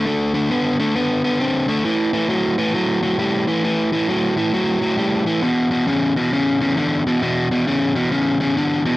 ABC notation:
X:1
M:4/4
L:1/8
Q:"Swing" 1/4=134
K:Amix
V:1 name="Overdriven electric guitar" clef=bass
[D,A,] [D,A,] [D,B,] [D,A,] [D,B,] [D,B,] [D,=C] [D,A,] | [A,,E,] [A,,E,] [A,,F,] [A,,E,] [A,,F,] [A,,F,] [A,,G,] [A,,E,] | [A,,E,] [A,,E,] [A,,F,] [A,,E,] [A,,F,] [A,,F,] [A,,G,] [A,,E,] | [E,,B,,] [E,,B,,] [E,,C,] [E,,B,,] [E,,C,] [E,,C,] [E,,D,] [E,,B,,] |
[E,,B,,] [E,,B,,] [E,,C,] [E,,B,,] [E,,C,] [E,,C,] [E,,D,] [E,,B,,] |]